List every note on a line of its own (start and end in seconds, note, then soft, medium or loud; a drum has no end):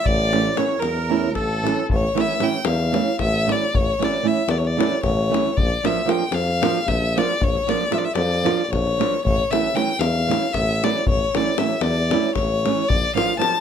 0.03 0.51 A1 medium
0.03 0.56 D5 medium
0.03 0.58 D5 loud
0.03 davul low medium
0.19 davul high soft
0.32 0.49 E3 medium
0.32 0.49 A3 medium
0.32 0.49 C#4 medium
0.32 0.50 E4 medium
0.32 davul high medium
0.46 davul high soft
0.55 0.72 E3 medium
0.55 0.73 A3 soft
0.55 0.74 C#4 soft
0.55 0.74 E4 medium
0.55 0.80 C#5 medium
0.55 0.81 C#5 medium
0.55 davul high medium
0.70 davul high soft
0.78 1.37 E2 medium
0.78 1.34 A#4 medium
0.78 1.35 A#4 medium
0.78 davul high medium
0.97 davul high soft
1.09 1.27 E3 medium
1.09 1.27 A3 medium
1.09 1.27 C#4 soft
1.09 1.27 E4 medium
1.25 davul high soft
1.34 1.68 A1 medium
1.34 1.85 A4 medium
1.34 1.86 A4 medium
1.34 davul high medium
1.34 davul low soft
1.53 davul high soft
1.63 1.81 E3 medium
1.63 1.81 A3 medium
1.63 1.81 C#4 medium
1.63 1.81 E4 medium
1.63 davul high medium
1.79 davul high soft
1.90 2.06 A1 medium
1.90 2.22 C#5 medium
1.90 davul low medium
2.15 2.32 E3 medium
2.15 2.32 A3 medium
2.15 2.32 C#4 soft
2.15 2.33 E4 medium
2.15 davul high medium
2.20 2.45 E5 medium
2.30 davul high soft
2.39 2.56 E3 medium
2.39 2.56 A3 medium
2.39 2.57 C#4 medium
2.39 2.57 E4 medium
2.39 2.67 G5 medium
2.39 davul high medium
2.53 davul high soft
2.65 2.98 E2 loud
2.65 3.20 F5 medium
2.65 davul high medium
2.79 davul high soft
2.92 3.10 E3 medium
2.92 3.10 A3 medium
2.92 3.10 C#4 medium
2.92 3.10 E4 medium
2.92 davul high medium
3.07 davul high soft
3.19 3.53 A1 medium
3.19 3.53 E5 medium
3.19 davul high medium
3.19 davul low medium
3.46 3.64 E3 medium
3.46 3.64 A3 medium
3.46 3.65 C#4 soft
3.46 3.65 E4 medium
3.46 davul high medium
3.51 3.77 D5 medium
3.62 davul high soft
3.74 3.90 A1 medium
3.74 4.06 C#5 medium
3.74 davul low medium
3.99 4.16 E3 medium
3.99 4.16 A3 soft
3.99 4.16 C#4 medium
3.99 4.17 E4 medium
3.99 davul high medium
4.04 4.29 D5 medium
4.14 davul high soft
4.23 4.39 E3 soft
4.23 4.40 A3 medium
4.23 4.40 C#4 soft
4.23 4.41 E4 medium
4.27 4.52 E5 medium
4.37 davul high soft
4.48 4.81 E2 medium
4.48 4.59 D5 medium
4.48 davul high medium
4.57 4.68 C#5 medium
4.65 5.03 D5 medium
4.65 davul high soft
4.77 4.94 E3 medium
4.77 4.94 A3 medium
4.77 4.94 C#4 medium
4.77 4.94 E4 medium
4.77 davul high medium
4.92 davul high soft
5.03 5.35 A1 medium
5.03 5.58 C#5 medium
5.03 davul high medium
5.03 davul low medium
5.30 5.48 E3 soft
5.30 5.48 A3 medium
5.30 5.49 C#4 soft
5.30 5.49 E4 medium
5.34 davul high medium
5.46 davul high soft
5.57 5.74 A#1 medium
5.57 5.87 D5 medium
5.57 davul low medium
5.84 6.00 F3 medium
5.84 6.00 A#3 medium
5.84 6.00 D4 medium
5.84 6.01 F4 medium
5.84 6.11 E5 medium
5.84 davul high medium
5.97 davul high soft
6.05 6.22 F3 medium
6.05 6.23 A#3 medium
6.05 6.23 D4 medium
6.05 6.24 F4 medium
6.05 davul high medium
6.10 6.35 G5 medium
6.21 davul high soft
6.31 6.64 F2 medium
6.31 6.89 F5 medium
6.31 davul high medium
6.48 davul high soft
6.62 6.78 F3 medium
6.62 6.78 A#3 medium
6.62 6.78 D4 medium
6.62 6.79 F4 medium
6.62 davul high medium
6.86 7.19 A#1 medium
6.86 7.20 E5 medium
6.86 davul high medium
6.86 davul low medium
7.16 7.32 F3 medium
7.16 7.32 A#3 soft
7.16 7.33 D4 soft
7.16 7.33 F4 medium
7.16 7.45 D5 medium
7.16 davul high medium
7.40 7.57 A#1 medium
7.40 7.71 C#5 medium
7.40 davul low loud
7.55 davul high soft
7.67 7.83 F3 medium
7.67 7.84 A#3 medium
7.67 7.84 D4 soft
7.67 7.84 F4 medium
7.67 7.95 D5 medium
7.67 davul high medium
7.81 davul high soft
7.90 8.07 F3 medium
7.90 8.07 A#3 soft
7.90 8.07 D4 medium
7.90 8.08 F4 medium
7.90 7.99 E5 medium
7.90 davul high medium
7.98 8.06 D5 medium
8.04 8.15 E5 medium
8.04 davul high soft
8.15 8.48 F2 loud
8.15 8.64 D5 medium
8.15 davul high medium
8.31 davul high soft
8.43 8.61 F3 medium
8.43 8.61 A#3 medium
8.43 8.61 D4 medium
8.43 8.62 F4 medium
8.43 davul high medium
8.59 davul high soft
8.64 8.72 D5 medium
8.69 9.02 A#1 medium
8.69 9.24 C#5 medium
8.69 davul high medium
8.69 davul low medium
8.87 davul high soft
8.98 9.15 F3 medium
8.98 9.16 A#3 medium
8.98 9.16 D4 medium
8.98 9.16 F4 medium
8.98 davul high medium
9.14 davul high soft
9.24 9.40 A1 loud
9.24 9.52 C#5 loud
9.24 davul low medium
9.51 9.67 E3 medium
9.51 9.67 A3 soft
9.51 9.68 C#4 medium
9.51 9.68 E4 medium
9.51 9.77 E5 medium
9.51 davul high medium
9.64 davul high soft
9.74 9.90 E3 medium
9.74 9.90 A3 soft
9.74 9.91 C#4 medium
9.74 9.91 E4 medium
9.74 10.01 G5 medium
9.74 davul high medium
9.89 davul high soft
9.99 10.31 E2 loud
9.99 10.55 F5 medium
9.99 davul high medium
10.15 davul high soft
10.27 10.44 E3 medium
10.27 10.44 A3 soft
10.27 10.45 C#4 medium
10.27 10.45 E4 medium
10.31 davul high medium
10.42 davul high soft
10.53 10.86 A1 medium
10.53 10.85 E5 medium
10.53 davul high medium
10.53 davul low soft
10.83 10.99 E3 medium
10.83 10.99 A3 soft
10.83 10.99 C#4 medium
10.83 11.00 E4 medium
10.83 11.07 D5 medium
10.83 davul high medium
10.96 davul high soft
11.07 11.24 A1 medium
11.07 11.38 C#5 medium
11.07 davul low medium
11.34 11.50 E3 medium
11.34 11.50 A3 soft
11.34 11.51 C#4 medium
11.34 11.50 E4 medium
11.34 11.60 D5 medium
11.34 davul high medium
11.46 davul high soft
11.58 11.74 E3 soft
11.58 11.74 A3 soft
11.58 11.74 C#4 soft
11.58 11.74 E4 medium
11.58 11.83 E5 medium
11.58 davul high medium
11.70 davul high soft
11.81 12.14 E2 medium
11.81 12.35 D5 medium
11.81 davul high medium
11.97 davul high soft
12.10 12.27 E3 medium
12.10 12.28 A3 soft
12.10 12.28 C#4 medium
12.10 12.28 E4 medium
12.10 davul high medium
12.24 davul high soft
12.35 12.67 A1 medium
12.35 12.90 C#5 medium
12.35 davul high medium
12.35 davul low medium
12.65 12.82 E3 medium
12.65 12.82 A3 soft
12.65 12.82 C#4 medium
12.65 12.83 E4 medium
12.65 davul high medium
12.77 davul high soft
12.89 13.06 A#1 medium
12.89 13.15 D5 loud
12.89 davul low medium
13.15 13.32 F3 medium
13.15 13.32 A#3 medium
13.15 13.32 D4 medium
13.15 13.33 F4 medium
13.15 13.38 F5 medium
13.15 davul high medium
13.30 davul high soft
13.38 13.55 F3 medium
13.38 13.55 A#3 medium
13.38 13.56 D4 medium
13.38 13.56 F4 medium
13.38 13.60 A5 medium
13.38 davul high medium